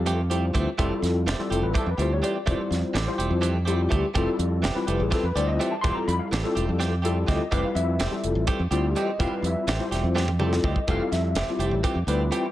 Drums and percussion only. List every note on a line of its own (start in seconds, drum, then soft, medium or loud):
0.06 closed hi-hat medium
0.31 closed hi-hat medium
0.55 kick medium
0.55 closed hi-hat medium
0.79 kick loud
0.79 closed hi-hat medium
1.04 snare soft
1.04 closed hi-hat medium
1.28 snare loud
1.28 closed hi-hat medium
1.52 closed hi-hat medium
1.75 kick loud
1.75 closed hi-hat medium
1.99 closed hi-hat medium
2.24 closed hi-hat medium
2.47 kick loud
2.47 closed hi-hat medium
2.72 snare soft
2.72 closed hi-hat medium
2.95 snare loud
2.95 closed hi-hat medium
3.20 closed hi-hat medium
3.43 closed hi-hat medium
3.67 closed hi-hat medium
3.92 kick medium
3.92 closed hi-hat medium
4.15 kick loud
4.15 closed hi-hat medium
4.39 closed hi-hat medium
4.64 snare loud
4.64 closed hi-hat medium
4.88 closed hi-hat medium
5.12 kick loud
5.12 snare soft
5.12 closed hi-hat medium
5.37 closed hi-hat medium
5.61 closed hi-hat medium
5.84 kick loud
5.84 closed hi-hat medium
6.09 closed hi-hat medium
6.33 snare loud
6.33 closed hi-hat medium
6.57 closed hi-hat medium
6.81 snare soft
6.81 closed hi-hat medium
7.05 closed hi-hat medium
7.28 kick medium
7.28 snare soft
7.28 closed hi-hat medium
7.52 kick loud
7.52 closed hi-hat medium
7.76 closed hi-hat medium
8.00 snare loud
8.00 closed hi-hat medium
8.24 closed hi-hat medium
8.47 kick loud
8.47 closed hi-hat medium
8.72 closed hi-hat medium
8.96 closed hi-hat medium
9.20 kick loud
9.20 closed hi-hat medium
9.44 closed hi-hat medium
9.68 snare loud
9.68 closed hi-hat medium
9.92 snare soft
9.92 closed hi-hat medium
10.17 snare medium
10.28 high tom medium
10.40 mid tom medium
10.53 snare medium
10.64 kick loud
10.76 kick medium
10.88 kick loud
10.88 closed hi-hat medium
11.12 snare soft
11.12 closed hi-hat medium
11.35 snare loud
11.35 closed hi-hat medium
11.60 closed hi-hat medium
11.84 kick loud
11.84 closed hi-hat medium
12.08 closed hi-hat medium
12.32 closed hi-hat medium